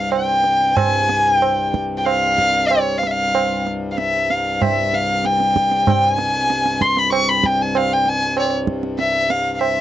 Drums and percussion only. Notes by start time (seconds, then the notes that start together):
0.12 tabla na
0.44 tabla te
0.77 tabla na, tabla ge
1.09 tabla te
1.42 tabla na
1.74 tabla ke
2.06 tabla na
2.38 tabla ke
2.71 tabla na
3.03 tabla te
3.35 tabla na
3.67 tabla te
3.98 tabla te
4.30 tabla te
4.62 tabla na, tabla ge
4.93 tabla te
5.25 tabla te
5.40 tabla te
5.56 tabla ke
5.71 tabla te
5.87 tabla na, tabla ge
6.19 tabla te
6.50 tabla te
6.66 tabla te
6.81 tabla ke
6.97 tabla te
7.12 tabla na
7.44 tabla ke
7.75 tabla na
8.06 tabla te
8.37 tabla na
8.67 tabla ke
8.83 tabla te
8.99 tabla te
9.30 tabla te
9.61 tabla na